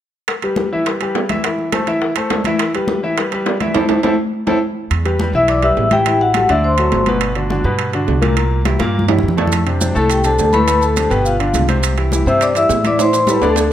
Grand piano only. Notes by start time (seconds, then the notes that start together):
0.43 G3 G4 B4
0.73 E3 E4 E5
0.88 G3 G4 B4
1.02 G3 G4 B4
1.30 E3 E4 E5
1.44 E3 E4 E5
1.73 A3 A4 C5
1.87 E3 E4 E5
2.17 A3 A4 C5
2.47 E3 E4 E5
2.75 G3 G4 B4
3.03 E3 E4 E5
3.18 G3 G4 B4
3.32 G3 G4 B4
3.61 E3 E4 E5
3.75 C4 E4 A4
3.89 C4 E4 A4
4.03 C4 E4 A4
4.47 C4 E4 A4
5.05 G3 G4 B4
5.20 G3 G4 B4
5.35 E3 E4 E5
5.63 G3 G4 B4
5.92 E3 E4 E5
6.06 E3 E4 E5
6.36 G3 G4 A4
6.49 D3 D4 D5
6.79 F#3 F#4 A4
7.08 B2 B3 B4
7.36 D3 D4 F#4
7.50 D3 D4 F#4
7.65 B2 B3 B4
7.94 D3 D4 F#4
8.22 A#2 A#3 A#4
8.37 A#2 A#3 A#4
8.66 E3 E4 G4
8.80 A#2 A#3 A#4
9.09 E3 E4 G4
9.37 A2 A3 A4
9.66 C3 C4 D4
9.81 C3 C4 D4
9.95 A2 A3 A4
10.24 C3 C4 D4
10.54 A2 A3 A4
10.67 A2 A3 A4
10.96 C3 C4 D4
11.10 B2 B3 B4
11.39 D3 D4 F4
11.69 C3 C4 C5
11.98 E3 E4 G4
12.12 E3 E4 G4
12.27 C3 C4 C5
12.56 E3 E4 G4
12.85 E3 E4 E5
12.99 E3 E4 E5
13.27 G3 G4 A4
13.42 D3 D4 D5